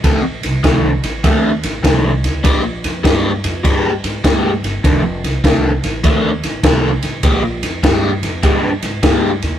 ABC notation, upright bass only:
X:1
M:4/4
L:1/8
Q:"Swing" 1/4=100
K:Fmix
V:1 name="Upright bass" clef=bass
A,,, C,, C,, A,,, E,, A,,, C,, D,, | B,,, F,, G,, F,, G,, _A,, G,, G,,, | F,,, C,, C,, A,,, E,, A,,, C,, A,,, | B,,, F,, G,, F,, G,, _A,, G,, E,, |]